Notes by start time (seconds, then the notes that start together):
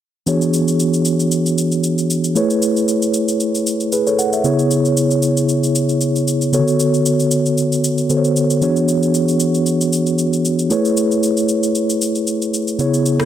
0.26 E3 B3 D4 F#4 G#4 C#5, shaker
0.42 shaker
0.54 shaker
0.68 shaker
0.80 shaker
0.94 shaker
1.05 shaker
1.20 shaker
1.31 shaker
1.46 shaker
1.58 shaker
1.72 shaker
1.84 shaker
1.98 shaker
2.10 shaker
2.24 shaker
2.35 A3 E4 G#4 B4 C#5, shaker
2.50 shaker
2.62 shaker
2.77 shaker
2.88 shaker
3.02 shaker
3.14 shaker
3.28 shaker
3.40 shaker
3.55 shaker
3.67 shaker
3.80 shaker
3.92 G#4 B4, shaker
4.07 A4 C#5, shaker
4.19 F#5, shaker
4.33 C#5 E5, shaker
4.44 C#3 B3 E4 G#4 C#5, shaker
4.59 shaker
4.71 shaker
4.85 shaker
4.97 shaker
5.11 shaker
5.22 shaker
5.37 shaker
5.49 shaker
5.64 shaker
5.75 shaker
5.89 shaker
6.01 shaker
6.16 shaker
6.28 shaker
6.42 shaker
6.52 C#3 B3 F#4 A4 C#5, shaker
6.59 D3
6.68 shaker
6.80 shaker
6.94 shaker
7.06 shaker
7.20 shaker
7.31 shaker
7.46 shaker
7.58 shaker
7.72 shaker
7.84 shaker
7.98 shaker
8.09 D3 B3 F#4 A4 C5, shaker
8.17 C#5
8.24 shaker
8.36 shaker
8.50 shaker
8.61 E3 B3 D4 F#4 G#4 C#5, shaker
8.76 shaker
8.88 shaker
9.03 shaker
9.14 shaker
9.28 shaker
9.40 shaker
9.54 shaker
9.66 shaker
9.81 shaker
9.93 shaker
10.06 shaker
10.18 shaker
10.33 shaker
10.45 shaker
10.59 shaker
10.70 A3 E4 G#4 B4 C#5, shaker
10.85 shaker
10.97 shaker
11.11 shaker
11.23 shaker
11.37 shaker
11.49 shaker
11.63 shaker
11.75 shaker
11.90 shaker
12.02 shaker
12.15 shaker
12.27 shaker
12.42 shaker
12.54 shaker
12.68 shaker
12.79 C#3 B3 E4 G#4 C#5, shaker
12.94 shaker
13.06 shaker
13.20 cross-stick, shaker